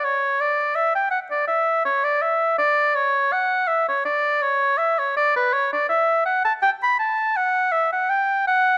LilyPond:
\new Staff \with { instrumentName = "Oboe" } { \time 4/4 \key d \major \tempo 4 = 82 cis''8 d''8 e''16 g''16 fis''16 d''16 e''8 cis''16 d''16 e''8 d''8 | cis''8 fis''8 e''16 cis''16 d''8 cis''8 e''16 cis''16 d''16 b'16 cis''16 d''16 | \key fis \phrygian e''8 fis''16 a''16 g''16 b''16 a''8 fis''8 e''16 fis''16 g''8 fis''8 | }